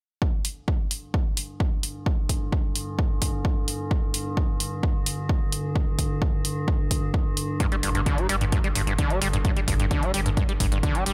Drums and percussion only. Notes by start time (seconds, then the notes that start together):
0.22 kick
0.45 open hi-hat
0.68 kick
0.91 open hi-hat
1.14 kick
1.37 open hi-hat
1.60 kick
1.83 open hi-hat
2.06 kick
2.29 kick, open hi-hat
2.52 kick
2.76 open hi-hat
2.99 kick
3.22 kick, open hi-hat
3.45 kick
3.68 open hi-hat
3.91 kick
4.14 open hi-hat
4.37 kick
4.60 open hi-hat
4.83 kick
5.06 open hi-hat
5.29 kick
5.52 open hi-hat
5.76 kick
5.99 kick, open hi-hat
6.22 kick
6.45 open hi-hat
6.68 kick
6.91 kick, open hi-hat
7.14 kick
7.37 open hi-hat
7.60 kick, closed hi-hat
7.72 closed hi-hat
7.83 open hi-hat
7.95 closed hi-hat
8.06 kick, closed hi-hat
8.18 closed hi-hat
8.29 open hi-hat
8.41 closed hi-hat
8.52 kick, closed hi-hat
8.64 closed hi-hat
8.75 open hi-hat
8.87 closed hi-hat
8.98 kick, closed hi-hat
9.10 closed hi-hat
9.22 open hi-hat
9.33 closed hi-hat
9.45 kick, closed hi-hat
9.57 closed hi-hat
9.68 kick, open hi-hat
9.80 closed hi-hat
9.91 kick, closed hi-hat
10.03 closed hi-hat
10.14 open hi-hat
10.26 closed hi-hat
10.37 kick, closed hi-hat
10.49 closed hi-hat
10.60 kick, open hi-hat
10.72 closed hi-hat
10.83 kick, closed hi-hat
10.95 closed hi-hat
11.06 open hi-hat